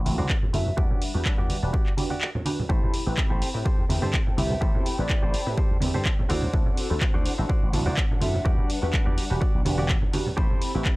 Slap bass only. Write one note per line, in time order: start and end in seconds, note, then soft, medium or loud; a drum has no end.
0.06 0.15 A1 loud
0.19 0.26 C2 medium
0.54 0.71 F#2 medium
0.78 0.87 E2 medium
1.15 1.22 E2 loud
1.39 1.49 E2 loud
1.50 muted slap bass stroke soft
1.63 1.70 E1 medium
2.70 2.79 A1 medium
3.07 3.14 A1 loud
3.31 3.41 A1 medium
3.42 muted slap bass stroke soft
3.55 3.62 A2 medium
3.66 muted slap bass stroke soft
3.79 3.86 E2 medium
3.90 3.99 E2 loud
4.02 4.10 G2 medium
4.38 4.55 C2 medium
4.62 4.71 A1 medium
4.99 5.06 A1 loud
5.23 5.33 A1 loud
5.34 muted slap bass stroke soft
5.47 5.54 A2 medium
5.71 5.78 E2 medium
5.82 5.91 E2 loud
5.95 6.02 G2 medium
6.30 6.47 D2 medium
6.54 6.63 D2 loud
6.91 6.98 D2 loud
7.15 7.25 D2 loud
7.26 muted slap bass stroke soft
7.39 7.46 A1 medium
7.63 7.70 A1 medium
7.74 7.83 A1 loud
7.87 7.94 C2 medium
8.22 8.39 F#2 medium
8.46 8.55 E2 medium
8.83 8.90 E2 loud
9.07 9.17 E2 loud
9.18 muted slap bass stroke soft
9.31 9.38 E1 medium
9.55 9.62 B1 medium
9.66 9.96 E1 medium
10.38 10.47 A1 medium
10.75 10.82 A1 loud